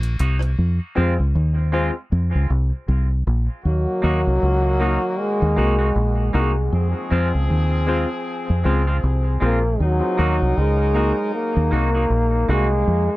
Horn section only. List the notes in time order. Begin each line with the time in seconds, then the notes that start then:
Already playing: D#3 A#3 F#4
3.64 D#3 A#3 F#4
6.72 F3 C4 G#4
9.80 F#3 D#4 A#4